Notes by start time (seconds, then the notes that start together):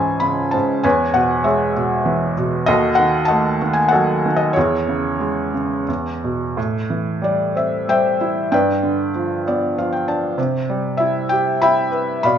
Already playing: C#2 G#2 E3 C#5 E5 G#5 A5 B5 C#6
0.20 C#3 B5
0.51 G#2 A5
0.83 E2 B4 C#5 G#5
1.14 B2 F#5
1.44 G#3 G#4 C#5 E5
1.76 B2
2.06 E3
2.38 B2
2.66 D#2 F#4 A4 D#5
2.95 D#3 F#5
3.25 D#5 F#5 A5
3.31 A3
3.62 D#3
3.73 G#5
3.88 A4 D#5 F#5
3.94 F#3
4.26 D#3
4.36 D#5
4.53 E4 G#4 C#5
4.57 E2
4.88 C#3
5.20 G#3
5.54 C#3
5.89 E2
6.24 B2
6.57 A2
6.90 E3
7.22 G3 D5
7.55 C4 E5
7.88 G3 C5 E5 G5
8.21 E4
8.52 G2 B4 D5 G5
8.83 D3
9.15 F3
9.47 B3 D5
9.78 F3 F5
9.92 G5
10.08 D4 A5
10.38 C3
10.70 G3
10.97 E4 E5
11.29 G4 G5
11.62 E4 E5 G5 B5
11.92 B4
12.23 B2 D5 F5 B5